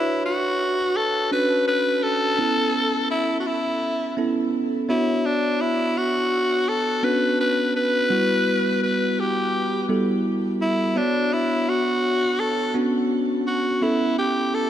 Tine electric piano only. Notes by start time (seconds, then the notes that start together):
Already playing: D4 F#4 B4 C#5
1.31 C#4 D4 F#4 B4
2.39 B3 C#4 E4 A4
4.17 B3 C#4 E4 A4
4.88 B3 D4 F#4 C#5
7.03 B3 C#4 D4 F#4
8.10 G3 B3 E4 F#4
9.89 G3 B3 E4 A4
10.96 B3 D4 F#4 C#5
12.74 B3 C#4 D4 F#4
13.81 B3 C#4 E4 A4